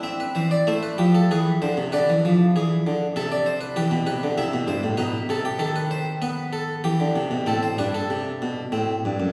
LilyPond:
<<
  \new Staff \with { instrumentName = "Harpsichord" } { \time 3/4 \key a \minor \tempo 4 = 96 << { e''16 b'16 c''16 d''16 c''16 b'16 g'16 a'16 b'8 c''8 | d''2 e''16 d''16 c''16 b'16 | b'8 b'8 e''8 c''8 b'8 a'16 g'16 | a'16 b'16 c''8 b'8 a'8 g'4 |
a'16 c''16 b'16 a'2~ a'16 | } \\ { c'4 e'4 gis'4 | b'4 gis'4 a'4 | g'4 e'4 dis'4~ | dis'4 b2 |
c'8 d'4. c'4 | } >> }
  \new Staff \with { instrumentName = "Harpsichord" } { \clef bass \time 3/4 \key a \minor r8 e8 a8 f8 e8 d16 c16 | d16 e16 f8 e8 d8 c4 | e16 b,16 c16 d16 c16 b,16 g,16 a,16 b,8 c8 | dis2 e16 d16 c16 b,16 |
a,8 g,8 c8 b,8 a,8 g,16 fis,16 | }
>>